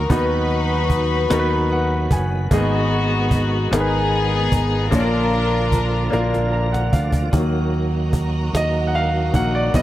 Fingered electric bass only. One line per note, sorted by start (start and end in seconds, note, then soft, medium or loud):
0.10 1.26 D#2 medium
1.30 2.06 D#2 medium
2.11 2.47 F#1 medium
2.51 3.67 G#1 loud
3.72 4.48 G#1 medium
4.52 4.89 G#1 medium
4.92 6.08 A#1 medium
6.13 6.89 A#1 medium
6.92 7.29 D2 medium
7.33 8.50 D#2 medium
8.53 9.30 D#2 medium
9.34 9.71 A#1 medium
9.74 9.82 B1 medium